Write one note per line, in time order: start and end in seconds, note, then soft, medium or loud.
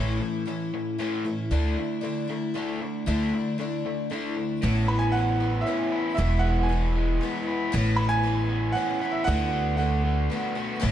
0.00 0.19 A1 medium
0.00 0.47 A2 medium
0.00 0.45 E3 medium
0.00 0.47 A3 medium
0.00 0.47 C#4 medium
0.00 0.48 E4 medium
0.21 0.45 A2 medium
0.21 0.45 E3 medium
0.46 0.71 A2 medium
0.46 0.98 E3 medium
0.46 0.99 A3 soft
0.46 0.99 C#4 medium
0.46 1.01 E4 medium
0.74 0.97 A2 medium
0.74 0.97 E3 medium
0.98 1.24 A2 medium
0.98 1.25 E3 medium
0.98 1.25 A3 medium
0.98 1.25 C#4 medium
0.98 1.23 E4 medium
1.25 1.49 A2 medium
1.25 1.49 E3 medium
1.25 1.50 A3 soft
1.25 1.51 C#4 soft
1.25 1.51 E4 soft
1.51 1.74 D2 medium
1.51 2.00 D3 medium
1.51 2.02 A3 medium
1.51 2.02 D4 medium
1.51 2.04 E4 medium
1.78 2.01 D3 medium
1.78 2.01 A3 medium
2.01 2.28 D3 medium
2.01 2.29 A3 soft
2.01 2.28 D4 medium
2.01 2.26 E4 medium
2.27 2.53 D3 medium
2.27 2.54 A3 soft
2.27 2.55 D4 soft
2.27 2.54 E4 medium
2.54 3.05 D3 medium
2.54 3.07 A3 medium
2.54 3.06 D4 medium
2.54 3.08 E4 medium
2.82 3.05 D3 medium
2.82 3.05 A3 medium
3.06 3.30 D2 medium
3.06 3.57 D3 medium
3.06 3.58 A3 medium
3.06 3.59 D4 medium
3.06 3.59 E4 medium
3.34 3.57 D3 medium
3.34 3.57 A3 medium
3.58 4.09 D3 medium
3.58 4.10 A3 medium
3.58 4.11 D4 medium
3.58 4.12 E4 medium
3.85 4.08 D3 medium
3.85 4.09 A3 medium
4.10 4.62 D3 medium
4.10 4.63 A3 medium
4.10 4.63 D4 medium
4.10 4.63 E4 medium
4.37 4.60 D3 medium
4.37 4.60 A3 medium
4.62 5.62 A1 loud
4.62 5.14 A2 medium
4.62 5.14 E3 medium
4.62 5.16 B3 medium
4.62 5.15 C#4 medium
4.62 5.18 E4 loud
4.88 5.39 B3 medium
4.88 5.02 B5 medium
4.99 5.13 G#5 medium
5.12 5.40 E3 medium
5.12 5.66 F#5 medium
5.16 5.41 B3 medium
5.16 5.41 C#4 medium
5.16 5.39 E4 medium
5.40 6.43 B3 medium
5.40 5.67 C#4 soft
5.40 5.66 E4 medium
5.44 5.66 B3 soft
5.61 6.12 E5 medium
5.67 6.18 E3 medium
5.67 6.18 B3 medium
5.67 6.19 C#4 medium
5.67 6.19 E4 medium
5.92 7.47 E4 medium
6.15 7.17 E1 loud
6.15 6.69 E2 medium
6.15 6.69 B2 medium
6.15 6.69 E3 medium
6.15 6.43 E5 medium
6.19 6.69 G#3 medium
6.19 6.71 B3 medium
6.19 6.72 E4 medium
6.39 6.57 F#5 medium
6.43 6.94 G#3 medium
6.59 6.68 F#5 medium
6.63 7.14 G#5 medium
6.69 7.20 E3 medium
6.69 7.21 G#3 medium
6.69 7.23 B3 medium
6.69 7.23 E4 medium
6.95 7.73 G#3 medium
7.21 7.72 E3 medium
7.21 7.73 G#3 medium
7.21 7.73 B3 medium
7.21 7.73 E4 medium
7.47 7.73 E4 medium
7.72 8.73 A1 loud
7.72 8.24 A2 medium
7.72 8.22 E3 loud
7.72 8.25 B3 medium
7.72 8.25 C#4 medium
7.72 8.25 E4 loud
7.96 8.49 B3 medium
7.96 8.09 B5 medium
8.09 8.71 G#5 loud
8.23 8.74 E3 medium
8.23 8.76 B3 medium
8.23 8.76 C#4 medium
8.23 8.77 E4 medium
8.49 9.52 B3 medium
8.72 9.01 E3 medium
8.72 9.14 F#5 medium
8.76 9.02 B3 medium
8.76 9.02 C#4 medium
8.76 9.00 E4 medium
9.01 9.27 B3 soft
9.01 9.28 C#4 soft
9.01 9.27 E4 soft
9.11 9.25 E5 medium
9.24 10.27 D2 loud
9.24 9.77 D3 medium
9.24 9.79 A3 medium
9.24 9.81 B3 medium
9.24 9.74 F#5 loud
9.29 9.80 F#4 medium
9.53 10.04 A3 medium
9.77 10.28 D3 medium
9.77 10.30 A3 medium
9.77 10.52 F#5 medium
9.81 10.31 B3 medium
9.81 10.32 F#4 medium
10.05 10.83 A3 medium
10.30 10.56 D3 medium
10.30 10.57 A3 medium
10.30 10.56 B3 medium
10.30 10.54 F#4 medium
10.55 10.81 A3 soft
10.55 10.80 B3 soft
10.55 10.82 F#4 medium
10.80 10.92 A1 loud
10.80 10.92 A2 medium
10.80 10.92 E3 medium
10.80 10.92 B3 medium
10.80 10.92 C#4 medium
10.80 10.92 E4 medium